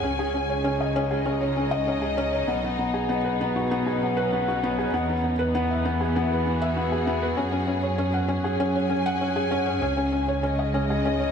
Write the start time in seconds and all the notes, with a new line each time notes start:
Already playing: C#4 G#4 G#5
0.03 C#2 C#3 C#4
0.19 G#4
0.34 C#4
0.41 G#3
0.49 C#5
0.57 D#4
0.64 C#4
0.81 D#5
0.96 C#4
1.11 G#4 D#5
1.26 C#4
1.41 C#5
1.57 C#4
1.71 D#5
1.87 C#4
2.02 G#4
2.18 C#4
2.33 C#5
2.47 B1 B2 B3
2.64 B3
2.79 B3
2.94 G#4
3.09 F#3 B3
3.24 B4
3.41 B3
3.56 C#4 F#4
3.71 B3
3.87 G#4
4.03 B3
4.17 B4
4.32 B3
4.48 F#4
4.63 B3
4.78 G#4
4.92 E2 E3 B3
5.09 B3
5.24 B3
5.36 B3 B4
5.42 G#4
5.55 B3
5.71 E5
5.85 B3
6.01 F#4 G#4
6.16 B3
6.32 B4
6.46 B3
6.62 E5
6.77 B3
6.92 G#4
7.07 B3
7.22 B4
7.36 F#2 F#3 C#4
7.52 C#4
7.67 C#4
7.83 C#5
7.98 C#4
8.13 C#4 F#5
8.28 C#4
8.44 G#4 G#5
8.60 C#4
8.75 C#5
8.90 C#4
9.06 F#5
9.21 C#4
9.36 G#4
9.51 C#4
9.66 C#5
9.81 C#2 C#3 C#4
9.97 C#4
10.11 G#3 C#4
10.28 C#5
10.41 C#4 D#5
10.59 D#5
10.74 C#4
10.90 D#4 G#4
11.05 C#4
11.20 C#5